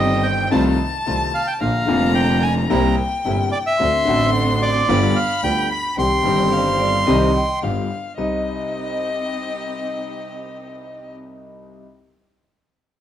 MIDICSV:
0, 0, Header, 1, 7, 480
1, 0, Start_track
1, 0, Key_signature, -3, "minor"
1, 0, Tempo, 547445
1, 1415, Time_signature, 4, 2, 24, 8
1, 11399, End_track
2, 0, Start_track
2, 0, Title_t, "Bandoneon"
2, 0, Program_c, 0, 23
2, 0, Note_on_c, 0, 75, 81
2, 203, Note_on_c, 0, 79, 83
2, 231, Note_off_c, 0, 75, 0
2, 432, Note_off_c, 0, 79, 0
2, 450, Note_on_c, 0, 81, 79
2, 559, Note_off_c, 0, 81, 0
2, 1177, Note_on_c, 0, 77, 82
2, 1288, Note_off_c, 0, 77, 0
2, 1291, Note_on_c, 0, 79, 81
2, 1346, Note_off_c, 0, 79, 0
2, 1410, Note_on_c, 0, 77, 78
2, 1857, Note_off_c, 0, 77, 0
2, 1883, Note_on_c, 0, 79, 93
2, 2122, Note_on_c, 0, 80, 96
2, 2136, Note_off_c, 0, 79, 0
2, 2232, Note_off_c, 0, 80, 0
2, 2368, Note_on_c, 0, 82, 96
2, 2592, Note_off_c, 0, 82, 0
2, 3085, Note_on_c, 0, 74, 103
2, 3139, Note_off_c, 0, 74, 0
2, 3215, Note_on_c, 0, 76, 118
2, 3773, Note_off_c, 0, 76, 0
2, 4055, Note_on_c, 0, 74, 93
2, 4523, Note_on_c, 0, 77, 83
2, 4541, Note_off_c, 0, 74, 0
2, 4745, Note_off_c, 0, 77, 0
2, 4768, Note_on_c, 0, 79, 100
2, 4987, Note_off_c, 0, 79, 0
2, 5012, Note_on_c, 0, 83, 103
2, 5228, Note_off_c, 0, 83, 0
2, 5251, Note_on_c, 0, 84, 112
2, 6657, Note_off_c, 0, 84, 0
2, 11399, End_track
3, 0, Start_track
3, 0, Title_t, "Violin"
3, 0, Program_c, 1, 40
3, 0, Note_on_c, 1, 79, 96
3, 459, Note_on_c, 1, 81, 104
3, 473, Note_off_c, 1, 79, 0
3, 1406, Note_on_c, 1, 82, 110
3, 1420, Note_off_c, 1, 81, 0
3, 2369, Note_on_c, 1, 79, 101
3, 2382, Note_off_c, 1, 82, 0
3, 3321, Note_off_c, 1, 79, 0
3, 3326, Note_on_c, 1, 84, 117
3, 4286, Note_on_c, 1, 83, 105
3, 4299, Note_off_c, 1, 84, 0
3, 5231, Note_off_c, 1, 83, 0
3, 5237, Note_on_c, 1, 79, 102
3, 5725, Note_on_c, 1, 77, 89
3, 5738, Note_off_c, 1, 79, 0
3, 6196, Note_on_c, 1, 75, 86
3, 6209, Note_off_c, 1, 77, 0
3, 6440, Note_off_c, 1, 75, 0
3, 6445, Note_on_c, 1, 79, 81
3, 6689, Note_on_c, 1, 77, 71
3, 6703, Note_off_c, 1, 79, 0
3, 7165, Note_off_c, 1, 77, 0
3, 7170, Note_on_c, 1, 75, 82
3, 9751, Note_off_c, 1, 75, 0
3, 11399, End_track
4, 0, Start_track
4, 0, Title_t, "Vibraphone"
4, 0, Program_c, 2, 11
4, 5714, Note_on_c, 2, 72, 86
4, 5958, Note_on_c, 2, 74, 96
4, 5964, Note_off_c, 2, 72, 0
4, 6200, Note_on_c, 2, 75, 92
4, 6207, Note_off_c, 2, 74, 0
4, 6652, Note_off_c, 2, 75, 0
4, 7175, Note_on_c, 2, 75, 73
4, 10367, Note_off_c, 2, 75, 0
4, 11399, End_track
5, 0, Start_track
5, 0, Title_t, "String section"
5, 0, Program_c, 3, 48
5, 0, Note_on_c, 3, 60, 82
5, 0, Note_on_c, 3, 63, 67
5, 0, Note_on_c, 3, 67, 92
5, 415, Note_off_c, 3, 60, 0
5, 415, Note_off_c, 3, 63, 0
5, 415, Note_off_c, 3, 67, 0
5, 446, Note_on_c, 3, 57, 85
5, 447, Note_on_c, 3, 63, 77
5, 449, Note_on_c, 3, 65, 88
5, 653, Note_off_c, 3, 57, 0
5, 653, Note_off_c, 3, 63, 0
5, 655, Note_off_c, 3, 65, 0
5, 925, Note_on_c, 3, 57, 58
5, 926, Note_on_c, 3, 63, 51
5, 928, Note_on_c, 3, 65, 59
5, 1132, Note_off_c, 3, 57, 0
5, 1133, Note_off_c, 3, 63, 0
5, 1134, Note_off_c, 3, 65, 0
5, 1408, Note_on_c, 3, 58, 49
5, 1410, Note_on_c, 3, 62, 44
5, 1412, Note_on_c, 3, 65, 55
5, 1612, Note_off_c, 3, 58, 0
5, 1613, Note_off_c, 3, 62, 0
5, 1614, Note_off_c, 3, 65, 0
5, 1645, Note_on_c, 3, 58, 85
5, 1646, Note_on_c, 3, 62, 75
5, 1647, Note_on_c, 3, 65, 90
5, 2332, Note_off_c, 3, 58, 0
5, 2333, Note_off_c, 3, 62, 0
5, 2333, Note_off_c, 3, 65, 0
5, 2370, Note_on_c, 3, 58, 92
5, 2370, Note_on_c, 3, 60, 79
5, 2373, Note_on_c, 3, 64, 96
5, 2572, Note_off_c, 3, 58, 0
5, 2572, Note_off_c, 3, 60, 0
5, 2573, Note_off_c, 3, 64, 0
5, 2844, Note_on_c, 3, 58, 57
5, 2847, Note_on_c, 3, 60, 55
5, 2849, Note_on_c, 3, 64, 63
5, 3047, Note_off_c, 3, 58, 0
5, 3049, Note_off_c, 3, 60, 0
5, 3050, Note_off_c, 3, 64, 0
5, 3327, Note_on_c, 3, 60, 53
5, 3329, Note_on_c, 3, 62, 50
5, 3331, Note_on_c, 3, 66, 56
5, 3527, Note_off_c, 3, 60, 0
5, 3528, Note_off_c, 3, 62, 0
5, 3530, Note_off_c, 3, 66, 0
5, 3562, Note_on_c, 3, 60, 96
5, 3563, Note_on_c, 3, 62, 76
5, 3566, Note_on_c, 3, 66, 95
5, 4244, Note_off_c, 3, 60, 0
5, 4245, Note_off_c, 3, 62, 0
5, 4246, Note_off_c, 3, 66, 0
5, 4281, Note_on_c, 3, 59, 77
5, 4282, Note_on_c, 3, 65, 76
5, 4285, Note_on_c, 3, 67, 98
5, 4482, Note_off_c, 3, 59, 0
5, 4483, Note_off_c, 3, 65, 0
5, 4484, Note_off_c, 3, 67, 0
5, 4759, Note_on_c, 3, 59, 55
5, 4762, Note_on_c, 3, 65, 49
5, 4763, Note_on_c, 3, 67, 59
5, 4960, Note_off_c, 3, 59, 0
5, 4962, Note_off_c, 3, 65, 0
5, 4962, Note_off_c, 3, 67, 0
5, 5235, Note_on_c, 3, 60, 46
5, 5236, Note_on_c, 3, 63, 44
5, 5239, Note_on_c, 3, 67, 52
5, 5438, Note_off_c, 3, 60, 0
5, 5438, Note_off_c, 3, 63, 0
5, 5440, Note_off_c, 3, 67, 0
5, 5473, Note_on_c, 3, 60, 88
5, 5476, Note_on_c, 3, 63, 72
5, 5477, Note_on_c, 3, 67, 89
5, 6161, Note_off_c, 3, 60, 0
5, 6163, Note_off_c, 3, 63, 0
5, 6164, Note_off_c, 3, 67, 0
5, 6199, Note_on_c, 3, 60, 82
5, 6201, Note_on_c, 3, 63, 72
5, 6203, Note_on_c, 3, 67, 94
5, 6403, Note_off_c, 3, 60, 0
5, 6404, Note_off_c, 3, 63, 0
5, 6405, Note_off_c, 3, 67, 0
5, 6685, Note_on_c, 3, 59, 54
5, 6686, Note_on_c, 3, 65, 46
5, 6687, Note_on_c, 3, 67, 55
5, 6890, Note_off_c, 3, 59, 0
5, 6891, Note_off_c, 3, 65, 0
5, 6892, Note_off_c, 3, 67, 0
5, 7172, Note_on_c, 3, 60, 65
5, 7172, Note_on_c, 3, 63, 60
5, 7172, Note_on_c, 3, 67, 59
5, 9752, Note_off_c, 3, 60, 0
5, 9752, Note_off_c, 3, 63, 0
5, 9752, Note_off_c, 3, 67, 0
5, 11399, End_track
6, 0, Start_track
6, 0, Title_t, "Grand piano"
6, 0, Program_c, 4, 0
6, 0, Note_on_c, 4, 31, 92
6, 0, Note_on_c, 4, 43, 84
6, 0, Note_on_c, 4, 51, 81
6, 0, Note_on_c, 4, 55, 71
6, 0, Note_on_c, 4, 60, 68
6, 0, Note_on_c, 4, 67, 79
6, 409, Note_off_c, 4, 51, 0
6, 414, Note_off_c, 4, 55, 0
6, 417, Note_off_c, 4, 43, 0
6, 418, Note_off_c, 4, 31, 0
6, 420, Note_off_c, 4, 60, 0
6, 425, Note_off_c, 4, 67, 0
6, 449, Note_on_c, 4, 51, 79
6, 451, Note_on_c, 4, 57, 71
6, 452, Note_on_c, 4, 48, 94
6, 453, Note_on_c, 4, 36, 96
6, 455, Note_on_c, 4, 60, 73
6, 456, Note_on_c, 4, 65, 90
6, 654, Note_off_c, 4, 51, 0
6, 655, Note_off_c, 4, 57, 0
6, 656, Note_off_c, 4, 48, 0
6, 657, Note_off_c, 4, 36, 0
6, 658, Note_off_c, 4, 60, 0
6, 658, Note_off_c, 4, 65, 0
6, 929, Note_on_c, 4, 51, 45
6, 932, Note_on_c, 4, 36, 52
6, 935, Note_on_c, 4, 57, 44
6, 935, Note_on_c, 4, 60, 44
6, 935, Note_on_c, 4, 65, 49
6, 936, Note_on_c, 4, 48, 56
6, 1134, Note_off_c, 4, 51, 0
6, 1136, Note_off_c, 4, 36, 0
6, 1137, Note_off_c, 4, 57, 0
6, 1137, Note_off_c, 4, 60, 0
6, 1137, Note_off_c, 4, 65, 0
6, 1138, Note_off_c, 4, 48, 0
6, 1408, Note_on_c, 4, 50, 49
6, 1411, Note_on_c, 4, 34, 53
6, 1411, Note_on_c, 4, 53, 44
6, 1413, Note_on_c, 4, 58, 48
6, 1413, Note_on_c, 4, 65, 56
6, 1414, Note_on_c, 4, 46, 54
6, 1612, Note_off_c, 4, 50, 0
6, 1614, Note_off_c, 4, 34, 0
6, 1614, Note_off_c, 4, 53, 0
6, 1615, Note_off_c, 4, 46, 0
6, 1615, Note_off_c, 4, 58, 0
6, 1615, Note_off_c, 4, 65, 0
6, 1631, Note_on_c, 4, 50, 84
6, 1644, Note_on_c, 4, 53, 77
6, 1648, Note_on_c, 4, 41, 96
6, 1649, Note_on_c, 4, 29, 94
6, 1653, Note_on_c, 4, 58, 79
6, 1665, Note_on_c, 4, 65, 81
6, 2325, Note_off_c, 4, 50, 0
6, 2332, Note_off_c, 4, 53, 0
6, 2334, Note_off_c, 4, 29, 0
6, 2334, Note_off_c, 4, 41, 0
6, 2336, Note_off_c, 4, 58, 0
6, 2342, Note_off_c, 4, 65, 0
6, 2368, Note_on_c, 4, 36, 103
6, 2368, Note_on_c, 4, 48, 102
6, 2369, Note_on_c, 4, 55, 84
6, 2371, Note_on_c, 4, 64, 88
6, 2372, Note_on_c, 4, 58, 79
6, 2571, Note_off_c, 4, 36, 0
6, 2571, Note_off_c, 4, 55, 0
6, 2572, Note_off_c, 4, 48, 0
6, 2572, Note_off_c, 4, 64, 0
6, 2573, Note_off_c, 4, 58, 0
6, 2852, Note_on_c, 4, 48, 51
6, 2855, Note_on_c, 4, 43, 55
6, 2855, Note_on_c, 4, 55, 45
6, 2855, Note_on_c, 4, 58, 46
6, 2858, Note_on_c, 4, 31, 58
6, 2859, Note_on_c, 4, 64, 56
6, 3051, Note_off_c, 4, 48, 0
6, 3053, Note_off_c, 4, 43, 0
6, 3053, Note_off_c, 4, 55, 0
6, 3053, Note_off_c, 4, 58, 0
6, 3054, Note_off_c, 4, 31, 0
6, 3055, Note_off_c, 4, 64, 0
6, 3328, Note_on_c, 4, 50, 61
6, 3329, Note_on_c, 4, 38, 60
6, 3330, Note_on_c, 4, 60, 51
6, 3331, Note_on_c, 4, 57, 50
6, 3335, Note_on_c, 4, 66, 55
6, 3529, Note_off_c, 4, 38, 0
6, 3529, Note_off_c, 4, 60, 0
6, 3530, Note_off_c, 4, 50, 0
6, 3530, Note_off_c, 4, 57, 0
6, 3531, Note_off_c, 4, 66, 0
6, 3551, Note_on_c, 4, 50, 86
6, 3565, Note_on_c, 4, 57, 72
6, 3569, Note_on_c, 4, 45, 102
6, 3570, Note_on_c, 4, 33, 97
6, 3572, Note_on_c, 4, 60, 70
6, 3585, Note_on_c, 4, 66, 92
6, 4239, Note_off_c, 4, 50, 0
6, 4246, Note_off_c, 4, 57, 0
6, 4248, Note_off_c, 4, 33, 0
6, 4248, Note_off_c, 4, 45, 0
6, 4249, Note_off_c, 4, 60, 0
6, 4256, Note_off_c, 4, 66, 0
6, 4281, Note_on_c, 4, 55, 80
6, 4282, Note_on_c, 4, 50, 92
6, 4285, Note_on_c, 4, 31, 102
6, 4286, Note_on_c, 4, 59, 78
6, 4286, Note_on_c, 4, 65, 102
6, 4287, Note_on_c, 4, 43, 101
6, 4482, Note_off_c, 4, 50, 0
6, 4482, Note_off_c, 4, 55, 0
6, 4484, Note_off_c, 4, 31, 0
6, 4484, Note_off_c, 4, 59, 0
6, 4485, Note_off_c, 4, 43, 0
6, 4485, Note_off_c, 4, 65, 0
6, 4765, Note_on_c, 4, 50, 63
6, 4765, Note_on_c, 4, 55, 44
6, 4765, Note_on_c, 4, 59, 41
6, 4766, Note_on_c, 4, 38, 50
6, 4766, Note_on_c, 4, 65, 57
6, 4964, Note_off_c, 4, 38, 0
6, 4964, Note_off_c, 4, 50, 0
6, 4964, Note_off_c, 4, 55, 0
6, 4964, Note_off_c, 4, 59, 0
6, 4964, Note_off_c, 4, 65, 0
6, 5236, Note_on_c, 4, 51, 49
6, 5238, Note_on_c, 4, 55, 42
6, 5240, Note_on_c, 4, 36, 51
6, 5240, Note_on_c, 4, 48, 56
6, 5241, Note_on_c, 4, 60, 47
6, 5243, Note_on_c, 4, 67, 51
6, 5438, Note_off_c, 4, 51, 0
6, 5440, Note_off_c, 4, 48, 0
6, 5440, Note_off_c, 4, 55, 0
6, 5441, Note_off_c, 4, 36, 0
6, 5441, Note_off_c, 4, 60, 0
6, 5442, Note_off_c, 4, 67, 0
6, 5462, Note_on_c, 4, 51, 82
6, 5473, Note_on_c, 4, 55, 73
6, 5478, Note_on_c, 4, 43, 88
6, 5479, Note_on_c, 4, 31, 82
6, 5485, Note_on_c, 4, 60, 69
6, 5494, Note_on_c, 4, 67, 87
6, 6156, Note_off_c, 4, 51, 0
6, 6161, Note_off_c, 4, 55, 0
6, 6164, Note_off_c, 4, 43, 0
6, 6165, Note_off_c, 4, 31, 0
6, 6168, Note_off_c, 4, 60, 0
6, 6172, Note_off_c, 4, 67, 0
6, 6199, Note_on_c, 4, 55, 77
6, 6200, Note_on_c, 4, 51, 86
6, 6201, Note_on_c, 4, 36, 99
6, 6203, Note_on_c, 4, 48, 93
6, 6203, Note_on_c, 4, 60, 73
6, 6204, Note_on_c, 4, 67, 88
6, 6403, Note_off_c, 4, 51, 0
6, 6403, Note_off_c, 4, 55, 0
6, 6404, Note_off_c, 4, 36, 0
6, 6405, Note_off_c, 4, 48, 0
6, 6405, Note_off_c, 4, 60, 0
6, 6406, Note_off_c, 4, 67, 0
6, 6686, Note_on_c, 4, 50, 44
6, 6688, Note_on_c, 4, 55, 42
6, 6688, Note_on_c, 4, 59, 41
6, 6689, Note_on_c, 4, 31, 59
6, 6691, Note_on_c, 4, 43, 55
6, 6693, Note_on_c, 4, 65, 50
6, 6891, Note_off_c, 4, 50, 0
6, 6892, Note_off_c, 4, 31, 0
6, 6892, Note_off_c, 4, 55, 0
6, 6892, Note_off_c, 4, 59, 0
6, 6894, Note_off_c, 4, 43, 0
6, 6894, Note_off_c, 4, 65, 0
6, 7170, Note_on_c, 4, 36, 57
6, 7171, Note_on_c, 4, 60, 46
6, 7171, Note_on_c, 4, 63, 64
6, 7172, Note_on_c, 4, 55, 48
6, 10365, Note_off_c, 4, 36, 0
6, 10365, Note_off_c, 4, 60, 0
6, 10365, Note_off_c, 4, 63, 0
6, 10366, Note_off_c, 4, 55, 0
6, 11399, End_track
7, 0, Start_track
7, 0, Title_t, "Double bass"
7, 0, Program_c, 5, 43
7, 0, Note_on_c, 5, 31, 94
7, 416, Note_off_c, 5, 31, 0
7, 455, Note_on_c, 5, 36, 91
7, 658, Note_off_c, 5, 36, 0
7, 937, Note_on_c, 5, 36, 65
7, 1138, Note_off_c, 5, 36, 0
7, 1411, Note_on_c, 5, 34, 62
7, 1614, Note_off_c, 5, 34, 0
7, 1656, Note_on_c, 5, 29, 104
7, 2338, Note_off_c, 5, 29, 0
7, 2373, Note_on_c, 5, 36, 109
7, 2574, Note_off_c, 5, 36, 0
7, 2852, Note_on_c, 5, 31, 67
7, 3051, Note_off_c, 5, 31, 0
7, 3329, Note_on_c, 5, 38, 67
7, 3528, Note_off_c, 5, 38, 0
7, 3568, Note_on_c, 5, 33, 106
7, 4247, Note_off_c, 5, 33, 0
7, 4282, Note_on_c, 5, 31, 98
7, 4482, Note_off_c, 5, 31, 0
7, 4762, Note_on_c, 5, 38, 60
7, 4962, Note_off_c, 5, 38, 0
7, 5236, Note_on_c, 5, 36, 66
7, 5438, Note_off_c, 5, 36, 0
7, 5482, Note_on_c, 5, 31, 86
7, 6166, Note_off_c, 5, 31, 0
7, 6202, Note_on_c, 5, 36, 101
7, 6405, Note_off_c, 5, 36, 0
7, 6684, Note_on_c, 5, 31, 60
7, 6890, Note_off_c, 5, 31, 0
7, 7169, Note_on_c, 5, 36, 55
7, 7372, Note_off_c, 5, 36, 0
7, 11399, End_track
0, 0, End_of_file